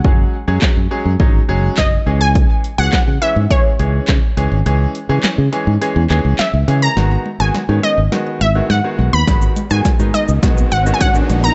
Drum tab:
HH |----------------|x-x-x-x-x-x-x-x-|x-x-x-x-x-x-x-x-|----------------|
SH |----------------|----------------|----------------|----------------|
CP |----x-------x---|----x-------x---|----x-----x-x---|----------------|
SD |----o-------o---|----o-------o---|----o-------o---|o---o---o---o---|
BD |o---o---o---o---|o---o---o---o---|----------------|----------------|

HH |x-x-x-x-x-x-x-x-|
SH |xxxxxxxxxxxxxxxx|
CP |----------------|
SD |o---o---o---o---|
BD |o---o---o---o---|